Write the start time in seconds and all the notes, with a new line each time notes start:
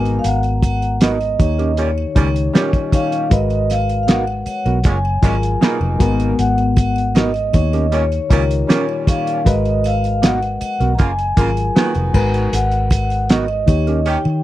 Already playing: G#1 B2 G#3 A#3 B3 D#4 F#4 A#4 G#5
0.05 closed hi-hat, muted triangle
0.19 F5
0.24 G#1 F#5 A#5, closed hi-hat, muted triangle
0.43 closed hi-hat, muted triangle
0.63 kick, closed hi-hat, triangle
0.82 closed hi-hat, muted triangle
1.01 B2 A#3 B3 D#4 F#4 A#4 D#5, snare, closed hi-hat, muted triangle
1.21 closed hi-hat, muted triangle
1.39 D#2 D#3 D#4 G4 C#5, kick, closed hi-hat, triangle
1.59 C#4 G4 A#4, closed hi-hat, muted triangle
1.77 A#2 G3 C#4 C#5, closed hi-hat, muted triangle
1.98 muted triangle
2.16 C#2 A#2 D#3 G3 C#4 D#4 G4 C#5, kick, closed hi-hat, triangle
2.36 closed hi-hat, muted triangle
2.54 A#2 G3 C#4 G4 A#4 D#5, snare, closed hi-hat, muted triangle
2.73 kick, closed hi-hat, muted triangle
2.92 D#3 D#4 G4 C#5 F5, kick, closed hi-hat, triangle
3.12 closed hi-hat, muted triangle
3.30 G#1 G#3 F#4 A#4 B4 D#5, kick, closed hi-hat, muted triangle
3.50 closed hi-hat, muted triangle
3.70 F5, snare, closed hi-hat, triangle
3.89 closed hi-hat, muted triangle
4.03 F5
4.07 B2 A#3 B3 D#4 F#4 A#4 F#5, snare, closed hi-hat, muted triangle
4.27 muted triangle
4.46 C#5, muted fingered electric bass stroke, closed hi-hat, triangle
4.66 B1 B3 F#4 A#4, closed hi-hat, muted triangle
4.84 F#1 A#2 G#3 C#4 G#5, kick, closed hi-hat, muted triangle
5.05 muted triangle
5.22 G#1 A#2 F#3 G#3 C#4 F4 G#4 A#4, kick, closed hi-hat, triangle
5.43 closed hi-hat, muted triangle
5.61 B2 A#3 D#4 F4 G#4, snare, closed hi-hat, muted triangle
5.80 F1, muted triangle
5.99 G#1 G#3 B3 F#4 A#4, kick, closed hi-hat, triangle
6.20 closed hi-hat, muted triangle
6.39 G#1 F#5, closed hi-hat, muted triangle
6.58 closed hi-hat, muted triangle
6.76 kick, closed hi-hat, triangle
6.96 closed hi-hat, muted triangle
7.15 B2 A#3 B3 D#4 F#4 A#4 D#5, snare, closed hi-hat, muted triangle
7.34 closed hi-hat, muted triangle
7.53 D#2 D#3 D#4 G4 C#5, kick, closed hi-hat, triangle
7.73 C#4 G4 A#4, closed hi-hat, muted triangle
7.92 A#2 G3 C#4 C#5, closed hi-hat, muted triangle
8.12 closed hi-hat, muted triangle
8.30 C#2 A#2 D#3 G3 C#4 D#4 F4 A#4, kick, closed hi-hat, triangle
8.38 G4
8.51 closed hi-hat, muted triangle
8.68 A#2 G3 C#4 G4 A#4, snare, closed hi-hat, muted triangle
8.89 muted triangle
9.07 D#3 D#4 G4 C#5 F5, kick, closed hi-hat, triangle
9.27 closed hi-hat, muted triangle
9.45 G#1 G#3 F#4 A#4 B4 D#5, kick, closed hi-hat, muted triangle
9.65 closed hi-hat, muted triangle
9.84 D#5 F5, closed hi-hat, triangle
10.04 closed hi-hat, muted triangle
10.22 B2 A#3 B3 D#4 F#4 A#4 F#5, snare, closed hi-hat, muted triangle
10.42 closed hi-hat, muted triangle
10.61 muted fingered electric bass stroke, closed hi-hat, triangle
10.80 B1 B3 F#4 A#4, closed hi-hat, muted triangle
10.95 A#5, closed hi-hat
10.99 F#1 C#3 A#3 F4 G#5, kick, muted triangle
11.19 closed hi-hat, muted triangle
11.37 G#1 C#3 F#3 A#3 F4 G#4 A#4, kick, closed hi-hat, triangle
11.57 closed hi-hat, muted triangle
11.76 D#3 A#3 B3 F4 F#4 G#4, snare, closed hi-hat, muted triangle
11.95 F1, closed hi-hat, muted triangle
12.13 G#1 G#3 F#4 A#4 B4, kick, crash, triangle
12.34 closed hi-hat, muted triangle
12.53 G#1 F#5, closed hi-hat, muted triangle
12.71 closed hi-hat, muted triangle
12.90 kick, closed hi-hat, triangle
13.10 closed hi-hat, muted triangle
13.29 D#3 B3 F#4 A#4 D#5, snare, closed hi-hat, muted triangle
13.48 muted triangle
13.66 D#2 D#3 D#4 G4 C#5, kick, closed hi-hat, triangle
13.87 C#4 G4 A#4, closed hi-hat, muted triangle
14.05 D#3 C#4 G4 G5, closed hi-hat, muted triangle
14.25 D#3, muted triangle